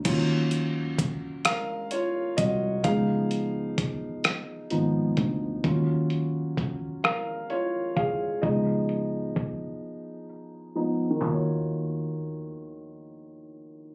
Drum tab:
CC |x-----|------|------|------|
HH |xxxxxx|xxxxxx|xxxxxx|xxx---|
CP |------|------|------|------|
SD |---r--|---r--|---r--|------|
BD |o-o--o|o-o--o|o-o--o|o-o---|

CC |------|
HH |------|
CP |x-----|
SD |------|
BD |o-----|